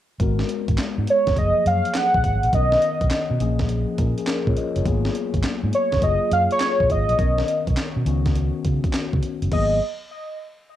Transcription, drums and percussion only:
0.20 kick, closed hi-hat
0.39 snare
0.49 closed hi-hat
0.68 kick, closed hi-hat
0.78 snare, clap, closed hi-hat
1.07 closed hi-hat
1.27 kick, snare, closed hi-hat
1.36 kick, closed hi-hat
1.66 closed hi-hat
1.85 closed hi-hat
1.95 snare, clap, closed hi-hat
2.14 kick
2.24 kick, closed hi-hat
2.43 closed hi-hat
2.53 kick, closed hi-hat
2.72 snare
2.82 closed hi-hat
3.01 kick, closed hi-hat
3.11 snare, clap, closed hi-hat
3.40 closed hi-hat
3.59 kick, snare, closed hi-hat
3.69 closed hi-hat
3.98 kick, closed hi-hat
4.18 closed hi-hat
4.27 snare, clap, closed hi-hat
4.47 kick
4.57 closed hi-hat
4.76 closed hi-hat
4.86 kick, closed hi-hat
5.05 snare
5.15 closed hi-hat
5.34 kick, closed hi-hat
5.43 snare, clap, closed hi-hat
5.73 closed hi-hat
5.92 kick, snare, closed hi-hat
6.02 kick, closed hi-hat
6.31 closed hi-hat
6.51 closed hi-hat
6.60 snare, clap, closed hi-hat
6.80 kick
6.90 kick, closed hi-hat
7.09 closed hi-hat
7.19 kick, closed hi-hat
7.38 snare
7.48 closed hi-hat
7.67 kick, closed hi-hat
7.77 snare, clap, closed hi-hat
8.06 closed hi-hat
8.26 kick, snare, closed hi-hat
8.35 closed hi-hat
8.65 kick, closed hi-hat
8.84 kick, closed hi-hat
8.93 snare, clap, closed hi-hat
9.13 kick
9.23 closed hi-hat
9.42 closed hi-hat
9.52 kick, crash

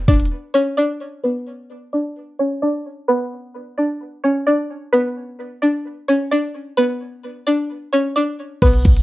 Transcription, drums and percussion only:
0.08 kick, closed hi-hat, open hi-hat
0.14 closed hi-hat
0.20 closed hi-hat
0.25 closed hi-hat
8.62 kick, closed hi-hat, crash
8.73 closed hi-hat
8.85 kick, closed hi-hat
8.97 closed hi-hat

